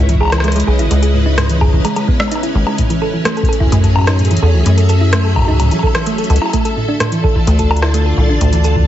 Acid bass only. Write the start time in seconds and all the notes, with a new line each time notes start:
Already playing: C#2
0.68 B1
0.79 G#1
0.91 C#2
2.55 G#1
3.72 F#2
4.43 E2
4.54 C#2
4.66 F#2
6.30 C#2
7.47 D2
8.18 C2
8.29 A1
8.41 D2